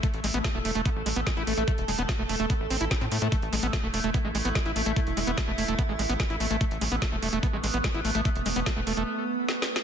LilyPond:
<<
  \new Staff \with { instrumentName = "Ambient pad" } { \time 4/4 \key c \major \tempo 4 = 146 <a a'>1~ | <a a'>1 | e'1~ | e'1 |
b1~ | b1 | }
  \new Staff \with { instrumentName = "Acid bass" } { \time 4/4 \key c \major a16 r16 gis16 b16 a16 a16 a16 a16 b16 r16 gis16 b16 gis16 e'16 a16 a16 | a16 r16 gis16 b16 a16 a16 a16 a16 b16 r16 c'16 e'16 c'16 c'16 a16 a16 | a16 r16 gis16 b16 a16 a16 a16 a16 b16 gis16 gis16 b16 gis16 e'16 a16 a16 | a16 r16 gis16 b16 a16 a16 a16 a16 b16 gis16 gis16 b16 gis16 e'16 a16 a16 |
a16 r16 gis16 b16 a16 a16 a16 a16 b16 gis16 gis16 b16 gis16 e'16 a16 a16 | a16 r16 gis16 b16 a16 a16 a16 a16 r2 | }
  \new Staff \with { instrumentName = "Analog synth bass" } { \clef bass \time 4/4 \key c \major r16 a,,16 a,,16 a,,16 r16 e,,16 e,,16 e,,16 r16 a,,16 a,,16 a,,16 r16 a,,16 a,,16 a,,16 | r16 e,,16 e,,16 e,,16 r16 e,,16 e,,16 e,,16 r16 a,,16 a,,16 a,,16 r16 a,16 a,16 a,16 | r16 a,,16 a,,16 a,,16 r16 e,,16 e,,16 e,,16 r16 a,,16 a,,16 a,,16 r16 a,,16 a,,16 a,,16 | r16 e,,16 e,,16 e,,16 r16 e,,16 e,,16 e,,16 r16 a,,16 a,,16 a,,16 r16 a,,16 a,,16 a,,16 |
r16 a,,16 a,,16 a,,16 r16 e,,16 e,,16 e,,16 r16 a,,16 a,,16 a,,16 r16 a,,16 a,,16 a,,16 | r16 e,,16 e,,16 e,,16 r16 e,,16 e,,16 e,,16 r2 | }
  \new DrumStaff \with { instrumentName = "Drums" } \drummode { \time 4/4 <hh bd>16 hh16 hho16 hh16 <hh bd sn>8 hho16 hh16 <hh bd>8 hho16 hh16 <hh bd sn>16 hh16 hho16 hh16 | <hh bd>16 hh16 hho16 hh16 <hh bd sn>8 hho16 hh16 <hh bd>8 hho16 hh16 <hh bd sn>16 hh16 hho16 hh16 | <hh bd>16 hh16 hho16 hh16 <hh bd sn>8 hho16 hh16 <hh bd>8 hho16 hh16 <hh bd sn>16 hh16 hho16 hh16 | <hh bd>16 hh16 hho16 hh16 <hh bd sn>8 hho16 hh16 <hh bd>8 hho16 hh16 <hh bd sn>16 hh16 hho16 hh16 |
<hh bd>16 hh16 hho16 hh16 <hh bd sn>8 hho16 hh16 <hh bd>8 hho16 hh16 <hh bd sn>16 hh16 hho16 hh16 | <hh bd>16 hh16 hho16 hh16 <hh bd sn>8 hho16 hh16 r4 \tuplet 3/2 { sn8 sn8 sn8 } | }
>>